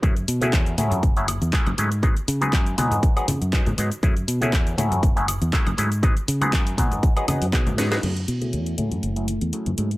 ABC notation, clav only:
X:1
M:4/4
L:1/16
Q:"Swing 16ths" 1/4=120
K:F#dor
V:1 name="Clav"
[F,A,CEG] z2 [F,A,CEG]3 [F,A,CEG]3 [F,A,CEG] z2 [F,A,CEG] z [F,A,CEG] z | [F,G,B,DG] z2 [F,G,B,DG]3 [F,G,B,DG]3 [F,G,B,DG] z2 [F,G,B,DG] z [F,G,B,DG] z | [F,A,CEG] z2 [F,A,CEG]3 [F,A,CEG]3 [F,A,CEG] z2 [F,A,CEG] z [F,A,CEG] z | [F,G,B,DG] z2 [F,G,B,DG]3 [F,G,B,DG]3 [F,G,B,DG] [F,G,B,DG] z [F,G,B,DG]2 [F,G,B,DG] [F,G,B,DG] |
[F,A,CEG] z2 [F,A,CEG]3 [F,A,CEG]3 [F,A,CEG] z2 [F,A,CEG] z [F,A,CEG] z |]